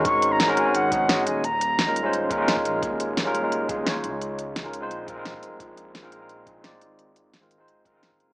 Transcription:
<<
  \new Staff \with { instrumentName = "Flute" } { \time 4/4 \key dis \minor \tempo 4 = 173 cis'''8. ais''8. gis''8 fis''4. gis''8 | ais''2 r2 | r1 | r1 |
r1 | r1 | }
  \new Staff \with { instrumentName = "Tine electric piano" } { \time 4/4 \key dis \minor <gis cis' dis' fis' ais'>4~ <gis cis' dis' fis' ais'>16 <gis cis' dis' fis' ais'>8 <gis cis' dis' fis' ais'>8. <gis cis' dis' fis' gis'>8 <gis cis' dis' fis' dis''>4 | r4 r16 <gis cis' dis' eis' ais'>8 <gis cis' dis' eis' bis'>8. <gis cis' dis' eis' ais'>16 <gis cis' dis' eis' ais'>4~ <gis cis' dis' eis' ais'>16~ | <gis cis' dis' eis' ais'>4~ <gis cis' dis' eis' ais'>16 <gis cis' dis' eis' ais'>8 <gis cis' dis' eis' ais'>8. <gis cis' dis' eis' gis'>8 <gis cis' dis' eis' cis''>4~ | <gis cis' dis' eis' cis''>4~ <gis cis' dis' eis' cis''>16 <gis cis' dis' eis' ais'>8 <gis bis dis' eis' bis'>8. <gis bis dis' eis' ais'>16 <gis bis dis' eis' ais'>4~ <gis bis dis' eis' ais'>16~ |
<gis bis dis' eis' ais'>4~ <gis bis dis' eis' ais'>16 <gis bis dis' eis' ais'>8 <gis bis dis' eis' ais'>8. <gis bis dis' eis' gis'>8 <gis bis dis' eis' d''>4~ | <gis bis dis' eis' d''>4~ <gis bis dis' eis' d''>16 <gis bis dis' eis' ais'>8 <gis bis dis' eis' bis'>8. <gis bis dis' eis' ais'>16 <gis bis dis' eis' ais'>4~ <gis bis dis' eis' ais'>16 | }
  \new Staff \with { instrumentName = "Detuned saw bass" } { \clef bass \time 4/4 \key dis \minor gis,,2.~ gis,,8 dis,,8~ | dis,,2.~ dis,,8 ais,,8 | dis,,2.~ dis,,8 cis,8~ | cis,2 ais,,4. eis,,8 |
ais,,2.~ ais,,8 gis,,8~ | gis,,2.~ gis,,8 eis,,8 | }
  \new DrumStaff \with { instrumentName = "Drums" } \drummode { \time 4/4 <hh bd>8 hh8 <hh sn>8 hh8 hh8 <hh bd>8 <hh sn>8 hh8 | hh8 hh8 <hh sn>8 hh8 hh8 <hh bd>8 <hh sn>16 bd16 hh8 | <hh bd>8 hh8 <hh sn>8 hh8 hh8 <hh bd>8 <hh sn>8 hh8 | hh8 hh8 <hh sn>8 hh8 hh8 <hh bd>8 <hh sn>16 bd16 hh8 |
<hh bd>8 hh8 <hh sn>8 hh8 hh8 <hh bd>8 <hh sn>8 hh8 | hh8 hh8 <hh sn>8 hh8 hh8 <hh bd>8 <hh sn>16 bd16 hh8 | }
>>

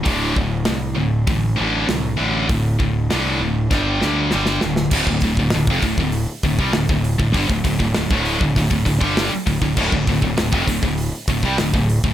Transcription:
<<
  \new Staff \with { instrumentName = "Distorted electric guitar" } { \clef bass \time 4/4 \key g \dorian \tempo 4 = 99 <d, a, d>8 <d, a,>8 <d, a,>8 <d, a,>8 <d, a,>8 <d, a, d>8 <d, a,>8 <d, a, d>8 | <d, a,>8 <d, a,>8 <d, a, d>8 <d, a,>8 <g, d g>8 <g, d g>8 <g, d g>8 <g, d>8 | <d, a,>16 <d, a,>16 <d, a,>16 <d, a,>16 <d, a,>16 <f, c>16 <d, a,>16 <d, a,>8 r16 <d, a,>16 <c g>16 <d, a,>16 <d, a,>8 <d, a,>16 | <g, d>16 <d, a,>16 <d, a,>16 <d, a,>16 <d, a,>16 <d, a, d>8 <d, a,>16 <d, a,>16 <d, a,>16 <d, a,>16 <g, d g>8 r16 <d, a,>16 <d, a,>16 |
<d, a,>16 <d, a,>16 <d, a,>16 <d, a,>16 <d, a,>16 <f, c>16 <d, a,>16 <d, a,>8 r16 <d, a,>16 <c g>16 <d, a,>16 <d, a,>8 <d, a,>16 | }
  \new Staff \with { instrumentName = "Fingered electric bass" } { \clef bass \time 4/4 \key g \dorian d,,8 d,,8 c,8 d,,8 a,,8 a,,8 c,8 a,,8 | d,,8 d,,8 c,8 d,,8 g,,8 d,8 g,,8 d,,8 | d,,16 d,,16 d,,16 d,,16 d,,16 f,,16 d,,16 d,,8 r16 d,,16 c,16 d,,16 d,,8 d,,16 | g,,16 d,,16 d,,16 d,,16 d,,16 d,,8 d,,16 d,,16 d,,16 d,,16 g,,8 r16 d,,16 d,,16 |
d,,16 d,,16 d,,16 d,,16 d,,16 f,,16 d,,16 d,,8 r16 d,,16 c,16 d,,16 d,,8 d,,16 | }
  \new DrumStaff \with { instrumentName = "Drums" } \drummode { \time 4/4 <hho bd>8 bd8 <hho sn>4 <hho bd>4 <hho sn>4 | <hho bd>8 bd8 <hho sn>4 <bd sn>8 sn8 sn16 sn16 sn16 sn16 | <cymc bd>16 bd16 <hho bd>16 bd16 <hho sn>16 bd16 <hho bd>16 bd16 hho8 <hho bd>16 bd16 <hho sn>16 bd16 hho16 bd16 | <hho bd>16 bd16 <hho bd>16 bd16 <hho sn>16 bd16 hho16 bd16 <hho bd>16 bd16 <hho bd>16 bd16 <hho sn>8 <hho bd>16 bd16 |
<cymc bd>16 bd16 <hho bd>16 bd16 <hho sn>16 bd16 <hho bd>16 bd16 hho8 <hho bd>16 bd16 <hho sn>16 bd16 hho16 bd16 | }
>>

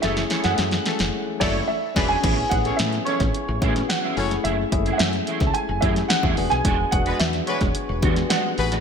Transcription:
<<
  \new Staff \with { instrumentName = "Grand piano" } { \time 4/4 \key a \major \tempo 4 = 109 e''8. fis''4.~ fis''16 d''8 e''8. gis''16~ | gis''8 fis''8 e''8 cis''4 r8 fis''4 | e''8.~ e''32 fis''32 e''8.~ e''32 a''32 gis''8 e''8 fis''8. gis''16~ | gis''8 fis''8 e''8 cis''4 r8 fis''4 | }
  \new Staff \with { instrumentName = "Horn section" } { \time 4/4 \key a \major <a e' fis' a'>16 r4 r16 <a e' fis' a'>16 r8. <a e' fis' a'>8 r8 <b e' gis' b'>8 | r8. <cis' a' cis''>16 r8 <cis' a' cis''>16 r4. r16 <cis' a' cis''>8 | r1 | r8. <b fis' gis' b'>16 r8 <b fis' gis' b'>16 r4. r16 <b fis' gis' b'>8 | }
  \new Staff \with { instrumentName = "Clean electric guitar" } { \time 4/4 \key a \major <e' a' cis''>16 r16 <e' a' cis''>16 <e' a' e''>16 r4. <e' a' cis''>8 r8 <d' gis' d''>8 | <cis' e' gis'>16 r8 <cis' e' gis'>16 r8 <cis' e' gis'>16 r8. <cis' e' gis'>16 r8 <cis' e' gis'>16 <a e' gis'>16 r16 | <a e' gis'>16 r8 <a e' gis'>16 r8 <a e' gis'>16 r8. <a e' gis'>16 r8 <a e' gis'>16 r8 | <gis d' fis'>16 r8 <gis d' fis'>16 r8 <gis d' fis'>16 r8. <gis d' fis'>16 r16 <gis d' fis'>16 r8 <gis d' fis'>16 | }
  \new Staff \with { instrumentName = "Tine electric piano" } { \time 4/4 \key a \major <a cis' e' gis'>8 <a cis' e' gis'>16 <gis a cis' e' gis'>4~ <gis a cis' e' gis'>16 r8 <a cis' e'>8 r8 <cis' d' fis' gis'>8 | <b cis' e' gis'>8 <b cis' e' gis'>4.~ <b cis' e' gis'>16 r16 <b cis' e' fis' gis'>4 <a cis' e' fis' gis'>8~ | <a cis' e' fis' gis'>16 r16 <gis a cis' e' gis'>4.~ <gis a cis' e' gis'>16 r16 <a cis' e' g' gis'>4 <b d' fis' gis'>8~ | <b d' fis' gis'>16 r16 <b d' fis' gis'>4.~ <b d' fis' gis'>16 r16 <b d' fis' g' gis'>4~ <b d' fis' g' gis'>16 r16 | }
  \new Staff \with { instrumentName = "Fretless electric bass" } { \clef bass \time 4/4 \key a \major fis,,8 r16 fis,16 fis,8 r16 fis,,16 r8 fis,,8 r8 e,,8 | a,,8 a,,8 a,8 r16 a,,16 r16 a,,16 a,8 r8 fis,,8 | fis,,8 fis,,8 fis,8 r16 cis,16 r16 fis,,16 fis,8 r16 e,16 e,,16 b,,16 | e,,8 e,,8 e,8 r16 e,,16 r16 e,,16 e,8 r8 a,,8 | }
  \new DrumStaff \with { instrumentName = "Drums" } \drummode { \time 4/4 <hh sn>16 <hh sn>16 <hh sn>16 <hh sn>16 <hh sn>16 <hh sn>16 <hh sn>16 <hh sn>16 r8 <cymc bd sn>8 r8 <cymc bd sn>8 | <cymc hh bd>8 <hh bd>16 hh16 <hh sn>16 <hh sn>16 hh16 <hh bd sn>16 hh8 <hh bd>16 <hh sn>16 <hh sn>8 hho16 <hh sn>16 | hh8 <hh bd>16 hh16 <hh sn>16 <hh sn>16 hh16 <hh bd sn>16 hh8 <hh bd>16 <hh sn>16 <hh sn>16 bd16 hho16 <hh sn>16 | <hh bd>8 <hh bd>16 hh16 <hh sn>16 <hh sn>16 hh16 <hh bd sn>16 hh8 <hh bd>16 <hh sn>16 <hh sn>8 hho16 <hh sn>16 | }
>>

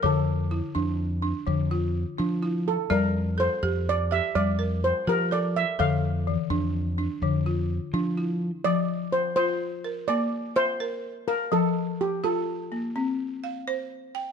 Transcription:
<<
  \new Staff \with { instrumentName = "Steel pan" } { \time 12/8 \key f \major \tempo 4. = 84 a'2 r2. r8 a'8 | bes'4 c''4 d''8 e''8 d''4 c''8 bes'8 d''8 e''8 | f''1~ f''4 r4 | d''4 c''8 c''4. d''4 c''4. bes'8 |
a'4 g'8 a'2 r2 r8 | }
  \new Staff \with { instrumentName = "Balafon" } { \time 12/8 \key f \major << { a'4 e'4. d'4 f'4. e'4 | d''4 a'4. g'4 bes'4. a'4 | a'4 e4. d'4 f'4. e'4~ | e'8 r2 bes'4 r8 e''4. f''8~ |
f''8 r2 bes4 r8 f''4. g''8 | } \\ { d4 r8 d'4 r8 d4 r8 d'4 r8 | g4 r8 g'4 r8 g4 r8 g'4 r8 | d4 r8 d'4 r8 d4 r8 d'4 r8 | f4 r8 f'4 r8 bes4 r8 bes'4 r8 |
f4 r8 f'4 r8 c'4 r8 c''4 r8 | } >> }
  \new Staff \with { instrumentName = "Fingered electric bass" } { \clef bass \time 12/8 \key f \major f,4. f,4. f,4. f4. | f,4. f,4. f,4. f4. | f,4. f,4. f,4. f4. | r1. |
r1. | }
>>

